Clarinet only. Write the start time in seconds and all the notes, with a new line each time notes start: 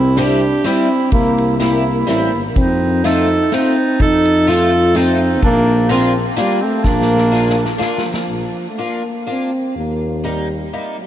Already playing: E4
0.19 G4
0.66 E4
1.13 E4
1.59 E4
2.09 E4
2.57 D#4
3.06 A4
3.54 D#4
4.01 A4
4.49 A4
4.97 D#4
5.44 D4
5.90 F4
6.36 A#3
6.61 C4
6.84 D4